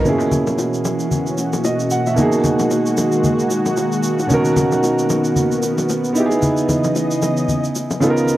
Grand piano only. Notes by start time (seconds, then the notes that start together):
0.02 B2 A#3 C#4
0.07 E4 G#4
1.64 D#5
1.91 F#5
2.07 E5
2.14 B2 A#3 D#4
2.19 F#4 G#4
4.27 B2 C#4 D#4
4.32 F#4 A#4
6.13 B3 D#4
6.17 E4 G4
6.26 G#4
8.00 C#3 B3 D#4 F4 A4
8.10 A#4